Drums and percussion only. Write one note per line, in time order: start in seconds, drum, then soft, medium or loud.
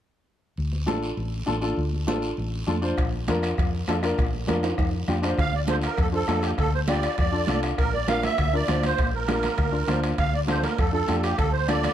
0.57 long guiro medium
0.73 high conga soft
0.88 high conga medium
0.88 short guiro medium
1.03 short guiro medium
1.17 high conga soft
1.17 long guiro medium
1.47 high conga medium
1.47 short guiro medium
1.62 short guiro medium
1.77 long guiro medium
1.93 high conga soft
2.08 high conga medium
2.08 short guiro medium
2.22 short guiro medium
2.37 high conga soft
2.37 long guiro medium
2.67 high conga medium
2.67 short guiro medium
2.82 short guiro medium
2.97 bombo low medium
2.97 bombo rim medium
2.97 high timbale medium
2.97 long guiro medium
3.13 high conga soft
3.28 bombo rim medium
3.28 high conga medium
3.28 high timbale medium
3.28 short guiro medium
3.43 bombo rim medium
3.43 high timbale medium
3.43 short guiro medium
3.58 bombo low medium
3.58 bombo rim medium
3.58 high conga soft
3.58 high timbale medium
3.58 long guiro medium
3.87 bombo rim medium
3.87 high conga medium
3.87 high timbale medium
3.87 low timbale medium
3.87 short guiro medium
4.03 bombo rim medium
4.03 high timbale medium
4.03 short guiro medium
4.18 bombo low medium
4.18 bombo rim medium
4.18 high timbale medium
4.18 long guiro medium
4.34 high conga soft
4.47 bombo rim medium
4.47 high conga medium
4.47 high timbale medium
4.47 short guiro medium
4.63 bombo rim medium
4.63 high timbale medium
4.63 short guiro medium
4.78 bombo low medium
4.78 bombo rim medium
4.78 high conga soft
4.78 high timbale medium
4.78 long guiro medium
5.08 bombo rim medium
5.08 high conga medium
5.08 short guiro medium
5.23 bombo rim medium
5.23 low timbale medium
5.23 short guiro medium
5.38 bombo low medium
5.38 bombo rim medium
5.38 high timbale medium
5.38 long guiro medium
5.53 high conga soft
5.67 bombo rim medium
5.67 high conga medium
5.67 high timbale medium
5.67 short guiro medium
5.82 bombo rim medium
5.82 high timbale medium
5.82 short guiro medium
5.97 bombo low medium
5.97 bombo rim medium
5.97 high conga soft
5.97 high timbale medium
5.97 long guiro medium
6.27 bombo rim medium
6.27 high conga medium
6.27 high timbale medium
6.27 low timbale medium
6.27 short guiro medium
6.42 bombo rim medium
6.42 high timbale medium
6.42 short guiro medium
6.58 bombo low medium
6.58 bombo rim medium
6.58 high timbale medium
6.58 long guiro medium
6.73 high conga soft
6.88 bombo rim medium
6.88 high conga medium
6.88 high timbale medium
6.88 short guiro medium
7.03 bombo rim medium
7.03 high timbale medium
7.03 short guiro medium
7.18 bombo low medium
7.18 bombo rim medium
7.18 high conga soft
7.18 high timbale medium
7.18 long guiro medium
7.47 bombo rim medium
7.47 high conga medium
7.47 high timbale medium
7.47 short guiro medium
7.63 bombo rim medium
7.63 high timbale medium
7.63 short guiro medium
7.78 bombo low medium
7.78 bombo rim medium
7.78 high timbale medium
7.78 long guiro medium
7.93 high conga soft
8.08 bombo rim medium
8.08 high conga medium
8.08 high timbale medium
8.08 short guiro medium
8.23 bombo rim medium
8.23 high conga medium
8.23 high timbale medium
8.23 short guiro medium
8.38 bombo low medium
8.38 bombo rim medium
8.38 high conga soft
8.38 high timbale medium
8.38 long guiro medium
8.68 bombo rim medium
8.68 high conga medium
8.68 high timbale medium
8.68 short guiro medium
8.83 bombo rim medium
8.83 high conga medium
8.83 high timbale medium
8.83 short guiro medium
8.98 bombo low medium
8.98 bombo rim medium
8.98 high timbale medium
8.98 long guiro medium
9.14 high conga soft
9.28 bombo rim medium
9.28 high conga medium
9.28 high timbale medium
9.28 short guiro medium
9.43 bombo rim medium
9.43 high conga medium
9.43 high timbale medium
9.43 short guiro medium
9.58 bombo low medium
9.58 bombo rim medium
9.58 high conga soft
9.58 high timbale medium
9.58 long guiro medium
9.88 bombo rim medium
9.88 high conga medium
9.88 high timbale medium
9.88 short guiro medium
10.03 bombo rim medium
10.03 high timbale medium
10.03 short guiro medium
10.18 bombo low medium
10.18 bombo rim medium
10.18 high timbale medium
10.18 long guiro medium
10.33 high conga soft
10.48 bombo rim medium
10.48 high conga medium
10.48 high timbale medium
10.48 short guiro medium
10.63 bombo rim medium
10.63 high conga medium
10.63 high timbale medium
10.63 short guiro medium
10.78 bombo low medium
10.78 bombo rim medium
10.78 high timbale medium
10.78 long guiro medium
11.08 bombo rim medium
11.08 high conga medium
11.08 high timbale medium
11.08 short guiro medium
11.23 bombo rim medium
11.23 high timbale medium
11.23 short guiro medium
11.38 bombo low medium
11.38 bombo rim medium
11.38 high timbale medium
11.38 long guiro medium
11.53 high conga soft
11.68 bombo rim medium
11.68 high conga medium
11.68 high timbale medium
11.68 short guiro medium
11.83 bombo rim medium
11.83 high conga medium
11.83 high timbale medium
11.83 short guiro medium